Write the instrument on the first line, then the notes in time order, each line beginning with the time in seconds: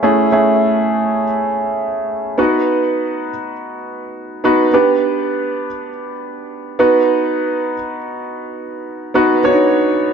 grand piano
0.03 A3 C#4 E4 G#4
0.32 A3 C#4 E4 G#4
2.38 B3 D#4 F#4 B4
4.44 B3 D#4 F#4 B4
4.73 B3 D4 G4 B4
6.79 B3 D#4 F#4 B4
9.14 B3 D#4 F#4 B4
9.44 B3 D4 F#4 C#5
9.50 D#4